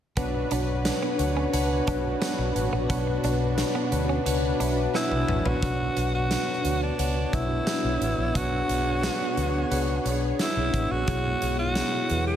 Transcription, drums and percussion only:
0.17 kick medium
0.17 closed hi-hat medium
0.51 closed hi-hat medium
0.85 snare medium
0.85 closed hi-hat medium
1.19 closed hi-hat medium
1.53 closed hi-hat medium
1.87 kick medium
1.87 closed hi-hat medium
2.22 snare medium
2.22 closed hi-hat medium
2.56 closed hi-hat medium
2.90 kick medium
2.90 closed hi-hat medium
3.24 closed hi-hat medium
3.58 snare medium
3.58 closed hi-hat medium
3.92 closed hi-hat medium
4.26 closed hi-hat medium
4.61 closed hi-hat medium
4.94 snare medium
5.12 high tom medium
5.28 mid tom medium
5.45 floor tom medium
5.62 kick medium
5.62 closed hi-hat medium
5.97 closed hi-hat medium
6.31 snare medium
6.31 closed hi-hat medium
6.65 closed hi-hat medium
6.99 closed hi-hat medium
7.33 kick medium
7.33 closed hi-hat medium
7.67 snare medium
7.67 closed hi-hat medium
8.02 closed hi-hat medium
8.35 kick medium
8.35 closed hi-hat medium
8.69 closed hi-hat medium
9.03 snare medium
9.03 closed hi-hat medium
9.37 closed hi-hat medium
9.72 closed hi-hat medium
10.06 closed hi-hat medium
10.39 snare medium
10.39 closed hi-hat medium
10.74 kick medium
10.74 closed hi-hat medium
11.07 kick medium
11.07 closed hi-hat medium
11.42 closed hi-hat medium
11.75 snare medium
11.75 closed hi-hat medium
12.10 closed hi-hat medium

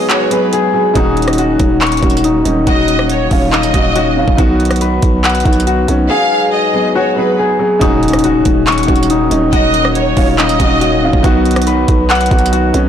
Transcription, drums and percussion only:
0.10 clap loud
0.10 closed hi-hat medium
0.31 closed hi-hat medium
0.53 closed hi-hat medium
0.95 kick loud
0.95 closed hi-hat medium
1.17 closed hi-hat soft
1.22 closed hi-hat medium
1.28 cross-stick medium
1.28 closed hi-hat medium
1.33 closed hi-hat medium
1.38 closed hi-hat medium
1.59 kick loud
1.59 closed hi-hat medium
1.81 clap loud
1.81 closed hi-hat medium
1.87 closed hi-hat medium
1.92 closed hi-hat medium
1.97 closed hi-hat medium
2.03 kick loud
2.03 closed hi-hat soft
2.10 closed hi-hat medium
2.17 closed hi-hat medium
2.24 closed hi-hat medium
2.45 closed hi-hat medium
2.67 kick loud
2.67 closed hi-hat medium
2.88 closed hi-hat medium
2.99 cross-stick medium
3.10 closed hi-hat medium
3.31 kick loud
3.31 open hi-hat soft
3.53 clap loud
3.53 closed hi-hat soft
3.63 closed hi-hat medium
3.74 kick loud
3.74 closed hi-hat medium
3.96 closed hi-hat medium
4.28 kick medium
4.38 kick loud
4.38 closed hi-hat medium
4.60 closed hi-hat soft
4.65 closed hi-hat medium
4.71 cross-stick medium
4.71 closed hi-hat medium
4.76 closed hi-hat medium
4.81 closed hi-hat medium
5.02 kick loud
5.02 closed hi-hat medium
5.24 clap loud
5.24 closed hi-hat medium
5.29 closed hi-hat medium
5.35 closed hi-hat medium
5.40 closed hi-hat medium
5.46 kick loud
5.46 closed hi-hat soft
5.53 closed hi-hat medium
5.60 closed hi-hat medium
5.67 closed hi-hat medium
5.88 closed hi-hat medium
7.81 kick loud
7.81 closed hi-hat medium
8.03 closed hi-hat soft
8.08 closed hi-hat medium
8.13 cross-stick medium
8.13 closed hi-hat medium
8.19 closed hi-hat medium
8.24 closed hi-hat medium
8.45 kick loud
8.45 closed hi-hat medium
8.67 clap loud
8.67 closed hi-hat medium
8.72 closed hi-hat medium
8.78 closed hi-hat medium
8.83 closed hi-hat medium
8.88 kick loud
8.88 closed hi-hat soft
8.96 closed hi-hat medium
9.03 closed hi-hat medium
9.10 closed hi-hat medium
9.31 closed hi-hat medium
9.53 kick loud
9.53 closed hi-hat medium
9.74 closed hi-hat medium
9.85 cross-stick loud
9.95 closed hi-hat medium
10.17 kick loud
10.17 open hi-hat soft
10.38 clap loud
10.38 closed hi-hat soft
10.49 closed hi-hat medium
10.60 kick loud
10.60 closed hi-hat medium
10.81 closed hi-hat medium
11.13 kick loud
11.24 kick loud
11.24 closed hi-hat medium
11.46 closed hi-hat soft
11.51 closed hi-hat medium
11.56 cross-stick loud
11.56 closed hi-hat medium
11.62 closed hi-hat medium
11.67 closed hi-hat medium
11.88 kick loud
11.88 closed hi-hat medium
12.10 clap loud
12.10 closed hi-hat medium
12.15 closed hi-hat medium
12.21 closed hi-hat medium
12.26 closed hi-hat medium
12.31 kick loud
12.31 closed hi-hat soft
12.39 closed hi-hat medium
12.46 closed hi-hat medium
12.53 closed hi-hat medium
12.74 closed hi-hat medium

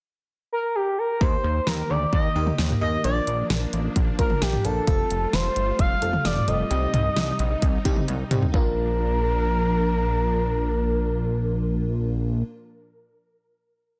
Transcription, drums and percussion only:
1.21 kick loud
1.67 snare loud
2.13 kick medium
2.47 mid tom medium
2.58 snare loud
2.70 mid tom loud
3.04 closed hi-hat medium
3.27 closed hi-hat medium
3.50 snare loud
3.50 closed hi-hat medium
3.73 closed hi-hat medium
3.96 kick medium
3.96 closed hi-hat medium
4.19 kick medium
4.19 closed hi-hat medium
4.30 mid tom medium
4.42 snare loud
4.42 closed hi-hat medium
4.53 mid tom medium
4.65 closed hi-hat medium
4.87 kick loud
4.87 closed hi-hat medium
5.11 closed hi-hat medium
5.33 snare loud
5.33 closed hi-hat medium
5.56 closed hi-hat medium
5.79 kick medium
5.79 closed hi-hat medium
6.02 closed hi-hat medium
6.13 mid tom medium
6.25 snare loud
6.25 closed hi-hat medium
6.36 mid tom loud
6.48 closed hi-hat medium
6.71 closed hi-hat medium
6.94 closed hi-hat medium
6.94 mid tom loud
7.16 snare loud
7.16 closed hi-hat medium
7.39 closed hi-hat medium
7.62 kick medium
7.62 closed hi-hat medium
7.85 kick medium
7.85 closed hi-hat medium
7.96 mid tom loud
8.08 closed hi-hat medium
8.08 high tom medium
8.31 closed hi-hat medium
8.31 mid tom medium
8.42 floor tom medium
8.54 kick loud

